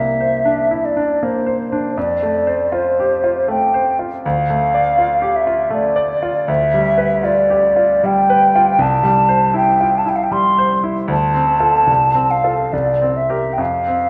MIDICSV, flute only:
0, 0, Header, 1, 2, 480
1, 0, Start_track
1, 0, Key_signature, -1, "major"
1, 0, Tempo, 760456
1, 1239, Time_signature, 3, 2, 24, 8
1, 2680, Tempo, 749064
1, 4600, Tempo, 810811
1, 5080, Tempo, 763359
1, 7000, Tempo, 807537
1, 7960, Tempo, 875912
1, 8713, End_track
2, 0, Start_track
2, 0, Title_t, "Flute"
2, 0, Program_c, 0, 73
2, 0, Note_on_c, 0, 76, 45
2, 535, Note_on_c, 0, 74, 39
2, 545, Note_off_c, 0, 76, 0
2, 780, Note_on_c, 0, 72, 37
2, 790, Note_off_c, 0, 74, 0
2, 1247, Note_off_c, 0, 72, 0
2, 1252, Note_on_c, 0, 74, 48
2, 1720, Note_on_c, 0, 72, 44
2, 1730, Note_off_c, 0, 74, 0
2, 2202, Note_off_c, 0, 72, 0
2, 2207, Note_on_c, 0, 79, 48
2, 2510, Note_off_c, 0, 79, 0
2, 2684, Note_on_c, 0, 77, 52
2, 3390, Note_on_c, 0, 76, 46
2, 3400, Note_off_c, 0, 77, 0
2, 3625, Note_off_c, 0, 76, 0
2, 3629, Note_on_c, 0, 74, 53
2, 4112, Note_on_c, 0, 76, 66
2, 4122, Note_off_c, 0, 74, 0
2, 4601, Note_on_c, 0, 74, 54
2, 4610, Note_off_c, 0, 76, 0
2, 5080, Note_on_c, 0, 79, 57
2, 5089, Note_off_c, 0, 74, 0
2, 5558, Note_on_c, 0, 81, 69
2, 5567, Note_off_c, 0, 79, 0
2, 6028, Note_off_c, 0, 81, 0
2, 6032, Note_on_c, 0, 79, 57
2, 6290, Note_on_c, 0, 81, 48
2, 6299, Note_off_c, 0, 79, 0
2, 6356, Note_on_c, 0, 79, 51
2, 6366, Note_off_c, 0, 81, 0
2, 6403, Note_on_c, 0, 77, 44
2, 6412, Note_off_c, 0, 79, 0
2, 6449, Note_on_c, 0, 79, 43
2, 6459, Note_off_c, 0, 77, 0
2, 6508, Note_on_c, 0, 84, 60
2, 6517, Note_off_c, 0, 79, 0
2, 6825, Note_off_c, 0, 84, 0
2, 7002, Note_on_c, 0, 81, 65
2, 7711, Note_on_c, 0, 77, 51
2, 7720, Note_off_c, 0, 81, 0
2, 7962, Note_on_c, 0, 74, 52
2, 7971, Note_off_c, 0, 77, 0
2, 8201, Note_on_c, 0, 76, 40
2, 8209, Note_off_c, 0, 74, 0
2, 8402, Note_on_c, 0, 79, 29
2, 8410, Note_off_c, 0, 76, 0
2, 8443, Note_on_c, 0, 77, 51
2, 8452, Note_off_c, 0, 79, 0
2, 8713, Note_off_c, 0, 77, 0
2, 8713, End_track
0, 0, End_of_file